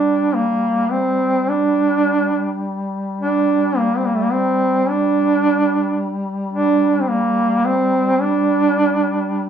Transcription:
Already playing: G3 D4
0.35 A#3
0.91 C4
1.49 D4
3.21 D4
3.77 A#3
3.97 C4
4.06 A#3
4.15 A3
4.23 A#3
4.32 C4
4.89 D4
6.53 D4
7.01 C4
7.09 A#3
7.65 C4
8.21 D4

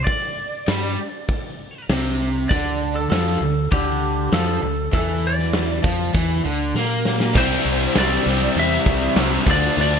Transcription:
0.04 D5, kick, open hi-hat
0.67 G2 G3, snare, open hi-hat
1.29 kick, open hi-hat
1.89 C2 C3, snare, open hi-hat
2.49 D2 D3 D5, kick, open hi-hat
2.96 A4
3.10 F2 F3 A4, snare, open hi-hat
3.41 D2 D3
3.72 D2 D3 G4, kick, open hi-hat
4.32 F2 F3 A4, snare, open hi-hat
4.62 D2 D3
4.93 E2 E3 A4, kick, open hi-hat
5.27 D5
5.39 snare
5.53 snare, open hi-hat
5.84 F2 F3, kick
6.14 E2 E3, kick, open hi-hat
6.45 D2 D3
6.74 A#2 A#3, snare
7.05 snare
7.20 snare
7.35 C2 C3 E3 G3 C4 E4 C5 G5, kick, crash
7.65 C2, crash
7.95 C2 C3 E3 G3 C4 E4 D5, snare, crash
8.23 C2 C3 E3 E4, crash
8.27 C3 G3 C4
8.41 snare
8.56 E2 C3 E3 G3 C4 E4 E5, crash
8.86 C2, kick, crash
9.16 C2 C3 E3 G3 C4 E4, snare, crash
9.46 D2 D3 A3 D4 F4 D5 A5, kick, crash
9.51 D5
9.76 D2 D3 A3 D4 F4, crash
9.81 D5

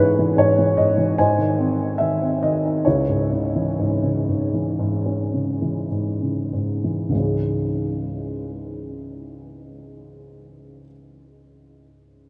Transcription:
Already playing: E3 E4 G#4 C#5
0.00 G#2 B4
0.19 E3
0.37 G#2 C#5
0.58 E3
0.77 G#2 D#5
0.97 E3
1.18 G#2 C5 D#5 G#5
1.38 D#3
1.58 C4
1.98 D#3 E5
2.22 C4
2.43 D#3 D#5
2.65 D#4
2.85 C#2 E4 G#4 C#5
3.09 G#2
3.32 C#3
3.56 E3
3.79 G#2
4.03 C#3
4.29 G#2
4.53 E3
4.79 G#2
5.06 C#4
5.33 C#3
5.62 E3
5.91 G#2
6.22 C#3
6.53 G#2
6.84 E3
7.09 C#2 G#2
7.15 E3 G#3
7.20 C#4 G#4

